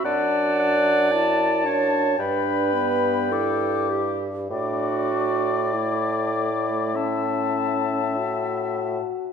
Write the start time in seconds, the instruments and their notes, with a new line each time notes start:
0.05 bassoon F#2, french horn D4, clarinet D5, oboe F#5, flute A5
0.60 oboe F#5
1.12 french horn E4, oboe A5, flute A5
1.65 french horn D4, clarinet C#5
2.18 bassoon G2, french horn D4, clarinet B4, oboe G5, flute B5
2.73 french horn B3
3.31 french horn E4, clarinet A4, flute D6
3.90 clarinet G4
4.50 bassoon A2, french horn D4, clarinet F#4, oboe D5, flute D6
5.74 french horn A3, clarinet E4
6.95 french horn C#4, oboe E5, flute A5
8.17 french horn F#4